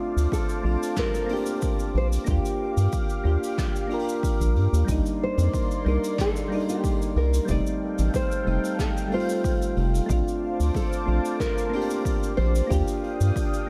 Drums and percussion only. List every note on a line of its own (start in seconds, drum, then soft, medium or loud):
0.17 open hi-hat medium
0.17 cabasa medium
0.32 kick medium
0.32 open hi-hat medium
0.32 cabasa medium
0.49 cabasa soft
0.65 open hi-hat soft
0.82 open hi-hat medium
0.82 cabasa medium
0.96 kick loud
0.96 snare medium
0.96 open hi-hat medium
0.96 cabasa medium
1.15 cabasa soft
1.29 open hi-hat medium
1.36 open hi-hat medium
1.46 open hi-hat medium
1.46 cabasa medium
1.61 kick loud
1.61 open hi-hat medium
1.61 cabasa medium
1.79 cabasa soft
1.95 open hi-hat soft
2.13 open hi-hat medium
2.13 cabasa medium
2.27 kick loud
2.27 open hi-hat medium
2.27 cabasa medium
2.45 cabasa soft
2.77 open hi-hat medium
2.77 cabasa medium
2.92 kick loud
2.92 open hi-hat medium
2.92 cabasa medium
3.10 cabasa soft
3.24 open hi-hat soft
3.43 open hi-hat medium
3.43 cabasa medium
3.58 kick loud
3.58 snare medium
3.58 open hi-hat medium
3.58 cabasa medium
3.76 cabasa medium
3.90 open hi-hat medium
3.99 open hi-hat medium
4.08 open hi-hat medium
4.08 cabasa medium
4.23 kick loud
4.23 open hi-hat medium
4.23 cabasa medium
4.41 cabasa medium
4.56 open hi-hat soft
4.74 open hi-hat medium
4.74 cabasa medium
4.88 kick loud
4.88 open hi-hat medium
4.88 cabasa medium
5.06 cabasa soft
5.37 open hi-hat soft
5.37 cabasa medium
5.53 kick medium
5.53 open hi-hat medium
5.53 cabasa medium
5.71 cabasa soft
5.86 open hi-hat soft
6.03 open hi-hat medium
6.03 cabasa medium
6.18 kick medium
6.18 snare medium
6.18 open hi-hat medium
6.18 cabasa medium
6.36 cabasa medium
6.52 open hi-hat medium
6.60 open hi-hat medium
6.69 open hi-hat medium
6.69 cabasa medium
6.84 kick loud
6.84 open hi-hat medium
6.84 cabasa medium
7.02 cabasa soft
7.16 open hi-hat soft
7.33 open hi-hat medium
7.33 cabasa medium
7.48 kick loud
7.48 open hi-hat medium
7.48 cabasa medium
7.67 cabasa soft
7.98 open hi-hat medium
7.98 cabasa medium
8.13 kick medium
8.13 open hi-hat medium
8.13 cabasa medium
8.32 cabasa soft
8.47 open hi-hat soft
8.64 open hi-hat medium
8.64 cabasa medium
8.79 kick loud
8.79 snare medium
8.79 open hi-hat medium
8.79 cabasa medium
8.97 cabasa soft
9.12 open hi-hat medium
9.20 open hi-hat medium
9.29 open hi-hat medium
9.29 cabasa medium
9.44 kick medium
9.44 open hi-hat medium
9.44 cabasa medium
9.62 cabasa soft
9.76 open hi-hat soft
9.94 open hi-hat medium
9.94 cabasa medium
10.09 kick loud
10.09 open hi-hat medium
10.09 cabasa medium
10.28 cabasa soft
10.60 open hi-hat medium
10.60 cabasa medium
10.74 kick medium
10.74 open hi-hat medium
10.74 cabasa medium
10.93 cabasa soft
11.08 open hi-hat soft
11.25 open hi-hat medium
11.25 cabasa medium
11.40 kick loud
11.40 snare medium
11.40 open hi-hat medium
11.40 cabasa medium
11.58 cabasa soft
11.73 open hi-hat medium
11.81 open hi-hat medium
11.90 open hi-hat medium
11.90 cabasa medium
12.05 kick medium
12.05 open hi-hat medium
12.05 cabasa medium
12.23 cabasa medium
12.37 open hi-hat soft
12.55 open hi-hat medium
12.55 cabasa medium
12.70 kick loud
12.70 open hi-hat medium
12.70 cabasa medium
12.88 cabasa soft
13.04 open hi-hat medium
13.21 open hi-hat medium
13.21 cabasa medium
13.36 kick medium
13.36 open hi-hat medium
13.36 cabasa medium
13.54 cabasa soft